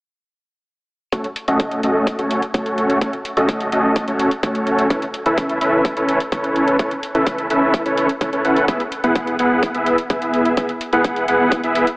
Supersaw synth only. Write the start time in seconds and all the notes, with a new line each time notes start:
1.12 A3 C#4 F#4 A4 C#5
1.48 A3 C#4 F#4 A4 D#5
1.83 A3 C#4 F#4 A4 D#5
2.19 A3 C#4 F#4 A4 C#5
2.54 A3 C#4 F#4 A4 C#5
3.01 A3 C#4 F#4 A4 C#5
3.37 A3 C#4 F#4 A4 D#5
3.72 A3 C#4 F#4 A4 D#5
4.08 A3 C#4 F#4 A4 C#5
4.43 A3 C#4 F#4 A4 C#5
4.90 C#4 E4 A4 B4 C#5
5.26 C#4 E4 A4 B4 E5
5.61 C#4 E4 A4 B4 E5
5.97 C#4 E4 A4 B4 C#5
6.32 C#4 E4 A4 B4 C#5
6.79 C#4 E4 A4 B4 C#5
7.15 C#4 E4 A4 B4 E5
7.50 C#4 E4 A4 B4 E5
7.86 C#4 E4 A4 B4 C#5
8.21 C#4 E4 A4 B4 C#5
8.33 C#4 E4 A4 B4 C#5
8.45 C#4 E4 A4 B4 F#5
8.68 B3 E4 G#4 B4 E5
9.04 B3 E4 G#4 B4 F#5
9.39 B3 E4 G#4 B4 F#5
9.75 B3 E4 G#4 B4 E5
10.10 B3 E4 G#4 B4 E5
10.57 B3 E4 G#4 B4 E5
10.93 B3 E4 G#4 B4 F#5
11.28 B3 E4 G#4 B4 F#5
11.64 B3 E4 G#4 B4 E5